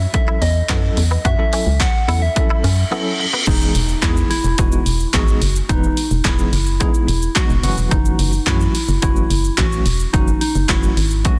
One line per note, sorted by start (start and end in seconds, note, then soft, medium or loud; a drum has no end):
0.00 0.12 E5 loud
0.13 0.39 F#3 medium
0.13 0.40 C#4 medium
0.13 0.40 E4 medium
0.13 0.40 A4 medium
0.13 0.43 E5 loud
0.13 muted clean electric guitar stroke soft
0.13 kick loud
0.13 closed hi-hat medium
0.28 0.37 E4 medium
0.41 0.62 E2 medium
0.41 0.51 C#4 medium
0.41 1.24 D#5 loud
0.41 open hi-hat medium
0.69 0.90 F#2 medium
0.69 1.02 F#3 medium
0.69 0.78 B3 medium
0.69 1.02 C#4 medium
0.69 1.02 E4 medium
0.69 1.02 A4 medium
0.69 kick loud
0.69 snare medium
0.69 clap loud
0.69 clap medium
0.69 closed hi-hat medium
0.97 1.18 E2 medium
0.97 muted clean electric guitar stroke soft
0.97 open hi-hat medium
1.11 1.20 B3 medium
1.25 1.35 F#2 loud
1.25 1.34 F#4 medium
1.25 1.82 E5 loud
1.25 kick loud
1.25 closed hi-hat medium
1.38 1.71 F#3 medium
1.38 1.71 C#4 medium
1.38 1.71 E4 medium
1.38 1.71 A4 medium
1.38 muted clean electric guitar stroke soft
1.53 1.62 C#4 medium
1.53 open hi-hat medium
1.67 1.87 C#2 medium
1.80 2.08 F#5 loud
1.80 kick loud
1.80 snare loud
1.80 clap medium
1.80 clap loud
1.80 closed hi-hat medium
2.08 2.29 E2 medium
2.08 2.21 F#3 medium
2.08 2.21 C#4 medium
2.08 2.21 E4 medium
2.08 2.17 E4 medium
2.08 2.21 A4 medium
2.08 2.24 F#5 loud
2.08 open hi-hat medium
2.22 3.19 E5 loud
2.35 2.62 F#3 medium
2.35 2.62 C#4 medium
2.35 2.62 E4 medium
2.35 2.62 A4 medium
2.35 muted clean electric guitar stroke soft
2.35 kick loud
2.35 closed hi-hat medium
2.35 reverse cymbal medium
2.50 2.59 E4 medium
2.64 2.84 F#2 loud
2.64 2.73 C#4 medium
2.64 open hi-hat medium
2.91 3.24 F#3 medium
2.91 3.01 B3 medium
2.91 3.24 C#4 medium
2.91 3.24 E4 medium
2.91 3.24 A4 loud
3.19 muted clean electric guitar stroke soft
3.33 3.42 B3 medium
3.47 3.68 E1 loud
3.47 3.73 E3 medium
3.47 3.73 G#3 medium
3.47 3.73 B3 medium
3.47 4.04 D#4 loud
3.47 3.73 D#4 medium
3.47 3.73 G#4 medium
3.47 kick loud
3.47 closed hi-hat medium
3.47 crash loud
3.47 impact medium
3.47 shaker medium
3.61 shaker medium
3.75 3.95 E1 loud
3.75 open hi-hat medium
3.75 shaker medium
3.89 shaker medium
4.02 4.23 E2 medium
4.02 4.28 E3 medium
4.02 4.29 G#3 medium
4.02 4.29 B3 medium
4.02 4.29 D#4 medium
4.02 4.30 E4 loud
4.02 4.29 G#4 medium
4.02 kick loud
4.02 snare medium
4.02 clap medium
4.02 clap loud
4.02 closed hi-hat medium
4.02 shaker medium
4.16 shaker medium
4.30 5.15 E4 loud
4.30 open hi-hat medium
4.30 shaker medium
4.44 4.55 E1 medium
4.44 shaker medium
4.58 4.79 E1 loud
4.58 4.84 E3 medium
4.58 4.84 G#3 medium
4.58 4.84 B3 medium
4.58 4.84 D#4 medium
4.58 4.84 F#4 medium
4.58 kick loud
4.58 closed hi-hat medium
4.58 shaker medium
4.72 shaker medium
4.86 5.07 E1 medium
4.86 open hi-hat medium
4.86 shaker medium
5.00 shaker medium
5.13 5.34 G#1 loud
5.13 5.40 E3 medium
5.13 5.40 G#3 medium
5.13 5.40 B3 medium
5.13 5.40 D#4 medium
5.13 5.55 F#4 loud
5.13 5.40 G#4 medium
5.13 kick loud
5.13 snare medium
5.13 clap medium
5.13 clap loud
5.13 closed hi-hat medium
5.13 shaker medium
5.28 shaker medium
5.41 5.62 F#1 loud
5.41 open hi-hat medium
5.41 shaker medium
5.56 shaker medium
5.69 5.90 E1 loud
5.69 5.95 E3 medium
5.69 5.95 G#3 medium
5.69 5.95 B3 medium
5.69 6.26 D#4 loud
5.69 5.95 D#4 medium
5.69 5.95 B4 medium
5.69 kick loud
5.69 closed hi-hat medium
5.69 shaker medium
5.83 shaker medium
5.97 open hi-hat medium
5.97 shaker medium
6.11 6.21 E1 loud
6.11 shaker medium
6.24 6.45 E1 medium
6.24 6.51 E3 medium
6.24 6.51 G#3 medium
6.24 6.51 B3 medium
6.24 6.51 D#4 medium
6.24 6.79 E4 loud
6.24 6.51 G#4 medium
6.24 kick loud
6.24 snare loud
6.24 clap medium
6.24 clap loud
6.24 closed hi-hat medium
6.24 shaker medium
6.39 shaker medium
6.53 6.83 F#1 loud
6.53 open hi-hat medium
6.53 shaker medium
6.66 shaker medium
6.80 7.06 E3 medium
6.80 7.06 G#3 medium
6.80 7.06 B3 medium
6.80 7.06 D#4 medium
6.80 7.32 E4 loud
6.80 7.06 G#4 medium
6.80 kick loud
6.80 closed hi-hat medium
6.80 shaker medium
6.94 shaker medium
7.08 7.29 E1 loud
7.08 open hi-hat medium
7.08 shaker medium
7.22 shaker medium
7.35 7.62 E3 medium
7.35 7.62 G#3 medium
7.35 7.62 B3 medium
7.35 7.62 D#4 medium
7.35 7.74 F#4 loud
7.35 7.62 F#4 medium
7.35 kick loud
7.35 snare medium
7.35 clap loud
7.35 clap medium
7.35 closed hi-hat medium
7.35 shaker medium
7.50 7.60 E1 medium
7.50 shaker medium
7.63 7.74 F#1 loud
7.63 8.30 E3 medium
7.63 8.30 F#3 medium
7.63 8.30 A3 medium
7.63 8.30 C#4 medium
7.63 8.30 F#4 medium
7.63 open hi-hat medium
7.63 shaker medium
7.77 7.88 E1 medium
7.77 shaker medium
7.91 8.12 F#1 loud
7.91 8.48 D#4 loud
7.91 kick loud
7.91 closed hi-hat medium
7.91 shaker medium
8.05 shaker medium
8.19 8.40 F#1 loud
8.19 open hi-hat medium
8.19 shaker medium
8.33 shaker medium
8.46 8.67 F#2 loud
8.46 8.73 E3 medium
8.46 8.73 F#3 medium
8.46 8.73 A3 medium
8.46 8.73 C#4 medium
8.46 9.01 E4 loud
8.46 8.73 F#4 medium
8.46 kick loud
8.46 snare medium
8.46 clap medium
8.46 clap loud
8.46 closed hi-hat medium
8.46 shaker medium
8.60 shaker medium
8.75 open hi-hat medium
8.75 shaker medium
8.88 8.99 F#1 loud
8.88 shaker medium
9.02 9.23 F#1 loud
9.02 9.28 E3 medium
9.02 9.28 F#3 medium
9.02 9.28 A3 medium
9.02 9.29 C#4 medium
9.02 9.59 E4 loud
9.02 9.29 F#4 medium
9.02 kick loud
9.02 closed hi-hat medium
9.02 shaker medium
9.16 shaker medium
9.30 9.51 F#1 medium
9.30 open hi-hat medium
9.30 shaker medium
9.44 shaker medium
9.58 9.79 A1 loud
9.58 9.84 E3 medium
9.58 9.84 F#3 medium
9.58 9.84 A3 medium
9.58 9.84 C#4 medium
9.58 10.00 F#4 loud
9.58 9.84 F#4 medium
9.58 kick loud
9.58 snare medium
9.58 clap loud
9.58 clap medium
9.58 closed hi-hat medium
9.58 shaker medium
9.72 shaker medium
9.86 10.06 E1 medium
9.86 open hi-hat medium
9.86 shaker medium
10.00 shaker medium
10.13 10.34 F#1 loud
10.13 10.39 E3 medium
10.13 10.40 F#3 medium
10.13 10.40 A3 medium
10.13 10.40 C#4 medium
10.13 10.39 D#4 loud
10.13 10.40 F#4 medium
10.13 kick loud
10.13 closed hi-hat medium
10.13 shaker medium
10.28 shaker medium
10.41 10.67 D#4 medium
10.41 open hi-hat medium
10.41 shaker medium
10.55 10.66 F#1 loud
10.55 shaker medium
10.69 10.90 F#1 loud
10.69 10.95 E3 medium
10.69 10.95 F#3 medium
10.69 10.95 A3 medium
10.69 10.95 C#4 medium
10.69 11.26 E4 loud
10.69 10.95 F#4 medium
10.69 kick loud
10.69 snare loud
10.69 clap medium
10.69 clap loud
10.69 closed hi-hat medium
10.69 shaker medium
10.83 shaker medium
10.97 11.28 G#1 loud
10.97 open hi-hat medium
10.97 shaker medium
11.11 shaker medium
11.24 11.39 E3 medium
11.24 11.39 F#3 medium
11.24 11.39 A3 medium
11.24 11.39 C#4 medium
11.24 11.39 F#4 loud
11.24 11.39 F#4 medium
11.24 kick loud
11.24 closed hi-hat medium
11.24 shaker medium